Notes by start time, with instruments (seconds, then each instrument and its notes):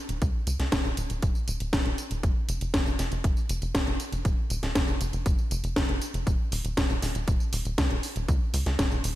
0.09 analog synth bass D#1, closed hi-hat, tambourine
0.22 analog synth bass C#2, kick, closed hi-hat, tambourine
0.47 analog synth bass C#2, closed hi-hat, tambourine
0.59 analog synth bass C#2, snare, closed hi-hat, tambourine
0.72 analog synth bass D#1, kick, snare, closed hi-hat, tambourine
0.85 analog synth bass D#1, tambourine
0.97 analog synth bass D#1, closed hi-hat, tambourine
1.10 analog synth bass D#1, closed hi-hat, tambourine
1.22 analog synth bass D#1, kick, closed hi-hat, tambourine
1.35 tambourine
1.48 analog synth bass D#1, closed hi-hat, tambourine
1.60 analog synth bass D#1, closed hi-hat, tambourine
1.73 analog synth bass D#1, kick, snare, closed hi-hat, tambourine
1.86 analog synth bass D#1, closed hi-hat
1.98 closed hi-hat, tambourine
2.11 analog synth bass D#1, closed hi-hat, tambourine
2.23 analog synth bass F1, kick, closed hi-hat, tambourine
2.49 analog synth bass F1, closed hi-hat, tambourine
2.61 analog synth bass F1, closed hi-hat, tambourine
2.74 analog synth bass F1, kick, snare, closed hi-hat, tambourine
2.86 analog synth bass F1, tambourine
2.99 analog synth bass F1, snare, closed hi-hat, tambourine
3.12 analog synth bass F1, closed hi-hat, tambourine
3.24 analog synth bass F1, kick, closed hi-hat, tambourine
3.37 tambourine
3.49 analog synth bass F1, closed hi-hat, tambourine
3.62 analog synth bass F1, closed hi-hat, tambourine
3.75 analog synth bass D#1, kick, snare, closed hi-hat, tambourine
3.87 analog synth bass F1, closed hi-hat
4.00 closed hi-hat, tambourine
4.12 analog synth bass F1, closed hi-hat, tambourine
4.25 analog synth bass D#1, kick, closed hi-hat, tambourine
4.50 analog synth bass D#1, closed hi-hat, tambourine
4.63 analog synth bass D#1, snare, closed hi-hat, tambourine
4.75 analog synth bass F1, kick, snare, closed hi-hat, tambourine
4.88 analog synth bass F1, tambourine
5.01 analog synth bass F1, closed hi-hat, tambourine
5.13 analog synth bass F1, closed hi-hat, tambourine
5.26 analog synth bass F1, kick, closed hi-hat, tambourine
5.39 tambourine
5.51 analog synth bass F1, closed hi-hat, tambourine
5.64 analog synth bass F1, closed hi-hat, tambourine
5.76 analog synth bass F1, kick, snare, closed hi-hat, tambourine
5.89 analog synth bass F1, closed hi-hat
6.02 closed hi-hat, tambourine
6.14 analog synth bass F1, closed hi-hat, tambourine
6.27 analog synth bass D#1, kick, closed hi-hat, tambourine
6.52 analog synth bass D#1, open hi-hat, tambourine
6.64 analog synth bass D#1, closed hi-hat, tambourine
6.77 analog synth bass D#1, kick, snare, closed hi-hat, tambourine
6.90 analog synth bass D#1, tambourine
7.02 analog synth bass D#1, snare, open hi-hat, tambourine
7.15 analog synth bass D#1, closed hi-hat, tambourine
7.28 analog synth bass D#1, kick, closed hi-hat, tambourine
7.40 tambourine
7.53 analog synth bass D#1, open hi-hat, tambourine
7.65 analog synth bass D#1, closed hi-hat, tambourine
7.78 analog synth bass C#2, kick, snare, closed hi-hat, tambourine
7.91 analog synth bass D#1, closed hi-hat
8.03 open hi-hat, tambourine
8.16 analog synth bass D#1, closed hi-hat, tambourine
8.28 analog synth bass C#2, kick, closed hi-hat, tambourine
8.54 analog synth bass C#2, open hi-hat, tambourine
8.66 analog synth bass C#2, snare, closed hi-hat, tambourine
8.79 analog synth bass D#1, kick, snare, closed hi-hat, tambourine
8.91 analog synth bass D#1, tambourine
9.04 analog synth bass D#1, open hi-hat, tambourine